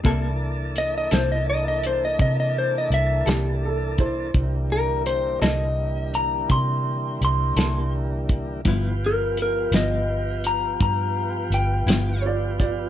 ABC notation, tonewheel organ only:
X:1
M:12/8
L:1/8
Q:3/8=56
K:Cmix
V:1 name="Tonewheel organ"
[E,B,DA]12 | [D,E,G,B,]12 | [F,=B,FG]12 |]